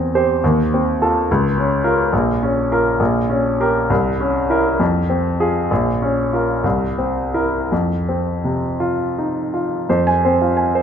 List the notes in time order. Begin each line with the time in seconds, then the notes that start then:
Already playing: E2 C4
0.15 G4 C5
0.44 D#2
0.74 C4
1.02 F4 A4
1.31 C#2
1.58 C#4
1.84 F4 A#4
2.13 A#1
2.43 C#4
2.72 F4 A#4
3.00 A#1
3.30 C#4
3.60 G4 A#4
3.90 C2
4.20 C#4
4.50 E4 A#4
4.79 F2
5.10 C4
5.40 F4 G#4
5.71 A#1
6.02 C#4
6.33 F4 A#4
6.64 C2
6.98 C4
7.34 E4 A#4
7.72 F2
8.09 C4
8.44 C3
8.80 F4
9.18 D#4
9.54 F4
9.89 F2 C5
10.07 G#5
10.25 C4 C5
10.42 F4
10.57 G#5
10.75 C5